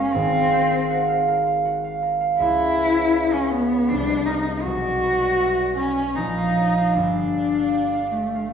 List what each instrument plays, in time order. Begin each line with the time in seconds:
Already playing: harp F#1 F#2 F#4 A#4 C#5 F5, cello C#4
0.12 harp G#1 G#2, cello C4
0.34 harp F5
0.53 harp A#4
0.71 harp F5
0.90 harp F#5
1.08 harp F5
1.28 harp A#4
1.46 harp F5
1.65 harp F#4
1.84 harp F5
2.02 harp A#4
2.21 harp F5
2.38 harp C#2, cello E4
2.59 harp C#5
2.78 harp B4
2.96 harp C#5
3.16 harp D5
3.33 cello C#4, harp C#5
3.51 cello B3, harp B4
3.72 harp C#5
3.89 harp C2, cello D4
4.10 harp D#5
4.26 cello D#4, harp A#4
4.47 harp D#5
4.63 harp B1, cello F#4
4.84 harp D5
5.03 harp B4
5.22 harp D5
5.41 harp E5
5.60 harp D5
5.77 cello C#4, harp B4
5.99 harp D5
6.15 harp A#1, cello D#4
6.37 harp F5
6.57 harp C#5
6.77 harp F5
6.93 harp G1 G2, cello D4
7.15 harp F5
7.34 harp D5
7.54 harp F5
7.73 harp G5
7.94 harp F5
8.12 cello A3, harp D5
8.35 harp F5